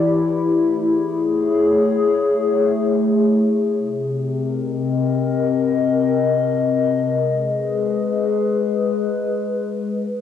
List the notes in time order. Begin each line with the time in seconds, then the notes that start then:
Already playing: E3 E4 G4 D5
0.50 A3
0.83 G#4
1.17 C#5
3.77 C3
3.97 C4
4.20 A#4
4.58 D#5
7.05 G#3
7.13 G#4
7.18 B4